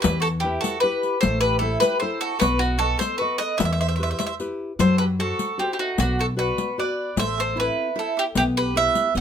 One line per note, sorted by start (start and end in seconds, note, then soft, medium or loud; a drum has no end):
0.00 0.43 E3 medium
0.00 0.20 G4 medium
0.00 0.21 B4 medium
0.00 riq medium
0.04 0.56 E2 medium
0.20 0.26 F#4 medium
0.20 0.27 A4 medium
0.24 riq soft
0.40 0.61 E4 medium
0.40 0.76 E4 soft
0.40 0.61 G4 medium
0.45 0.76 G4 soft
0.45 0.76 B4 soft
0.61 0.80 F#4 medium
0.61 0.80 A4 medium
0.61 riq soft
0.80 1.15 E4 soft
0.80 1.19 G4 medium
0.80 1.16 G4 soft
0.80 1.19 B4 medium
0.80 1.16 B4 soft
1.03 riq soft
1.20 1.75 A1 medium
1.20 1.61 A3 medium
1.20 1.40 A4 medium
1.20 1.40 C5 medium
1.20 riq medium
1.41 1.60 G4 medium
1.41 1.59 B4 medium
1.41 riq soft
1.59 1.93 E4 soft
1.59 1.80 E4 medium
1.59 1.79 A4 medium
1.59 1.94 A4 soft
1.59 1.94 C5 soft
1.80 2.00 G4 medium
1.80 1.99 B4 loud
1.80 riq medium
2.00 2.34 E4 soft
2.00 2.20 A4 medium
2.00 2.34 A4 soft
2.00 2.20 C5 medium
2.00 2.35 C5 medium
2.20 2.38 F#4 medium
2.20 2.39 A4 medium
2.39 2.93 B1 medium
2.39 2.80 B3 medium
2.39 2.59 F#4 medium
2.39 2.59 B4 loud
2.39 riq medium
2.59 2.77 D#4 medium
2.59 2.79 F#4 medium
2.59 riq soft
2.78 2.98 F#4 medium
2.78 2.99 A4 loud
2.78 3.12 A4 soft
2.78 3.12 B4 soft
2.78 3.12 D#5 soft
2.98 3.17 A4 medium
2.98 3.17 C5 medium
2.98 riq soft
3.18 3.38 F#4 medium
3.18 3.52 A4 soft
3.18 3.38 B4 medium
3.18 3.53 B4 soft
3.18 3.53 D#5 medium
3.38 3.56 B4 medium
3.38 3.58 D#5 loud
3.38 riq soft
3.57 4.12 E2 medium
3.57 3.98 E3 medium
3.57 3.66 B4 medium
3.57 3.64 E5 medium
3.57 riq medium
3.65 3.72 C5 soft
3.65 3.71 E5 medium
3.73 3.79 C5 medium
3.73 3.79 E5 medium
3.80 3.88 C5 soft
3.80 3.87 E5 medium
3.88 3.96 C5 soft
3.88 3.95 E5 medium
3.96 4.31 E4 soft
3.96 4.31 G4 soft
3.96 4.01 C5 soft
3.96 4.02 E5 soft
4.00 4.32 B4 soft
4.00 4.09 C5 medium
4.00 4.10 E5 medium
4.10 4.18 C5 soft
4.10 4.17 E5 medium
4.19 4.25 C5 medium
4.19 4.25 E5 medium
4.19 riq soft
4.26 4.34 C5 medium
4.26 4.34 E5 medium
4.40 4.72 E4 soft
4.40 4.72 G4 soft
4.40 4.72 B4 soft
4.40 riq soft
4.79 5.31 F#2 medium
4.79 5.18 F#3 medium
4.79 4.99 A4 medium
4.79 4.98 C5 medium
4.79 riq medium
4.98 5.06 G4 medium
4.98 5.04 B4 medium
5.19 5.51 F#4 soft
5.19 5.57 F#4 medium
5.19 5.51 A4 soft
5.19 5.57 A4 medium
5.19 5.51 C5 soft
5.39 riq soft
5.58 5.73 C4 medium
5.58 5.90 F#4 soft
5.58 5.72 G4 medium
5.58 5.90 A4 soft
5.58 5.90 C5 soft
5.72 5.78 E4 soft
5.72 5.79 G4 medium
5.79 5.97 D#4 medium
5.79 5.99 F#4 medium
5.98 6.50 B1 medium
5.98 6.37 B3 medium
5.98 6.18 D4 medium
5.98 6.20 F#4 medium
5.98 riq medium
6.19 6.24 F#4 medium
6.19 6.26 A4 medium
6.37 6.69 F#4 soft
6.37 6.76 F#4 medium
6.37 6.69 B4 soft
6.37 6.79 B4 medium
6.37 6.69 D5 soft
6.58 riq soft
6.78 7.09 F#4 soft
6.78 7.09 B4 soft
6.78 7.15 B4 medium
6.78 7.10 D5 soft
6.78 7.19 D5 medium
7.16 7.68 A1 medium
7.16 7.55 A3 medium
7.16 7.37 C5 medium
7.16 7.39 E5 medium
7.16 riq medium
7.38 7.56 A4 medium
7.38 7.59 C5 medium
7.56 7.88 C4 soft
7.56 7.88 E4 soft
7.56 7.94 E4 medium
7.56 7.88 A4 soft
7.60 7.95 B4 medium
7.95 8.27 E4 soft
7.95 8.14 E4 medium
7.95 8.28 A4 soft
7.95 8.16 A4 medium
7.95 8.28 C5 soft
8.17 8.22 E4 medium
8.17 8.24 G4 medium
8.35 8.87 B1 medium
8.35 8.74 B3 medium
8.35 8.42 E4 medium
8.35 8.43 G4 loud
8.35 riq soft
8.57 8.75 G4 medium
8.57 8.75 B4 medium
8.76 9.07 E4 soft
8.76 9.07 G4 soft
8.76 9.12 B4 medium
8.76 9.08 B4 soft
8.76 9.13 E5 loud
8.95 riq soft
9.15 9.21 F#1 medium
9.15 9.21 B3 medium
9.15 9.21 D#5 medium
9.15 9.21 F#5 medium
9.15 riq soft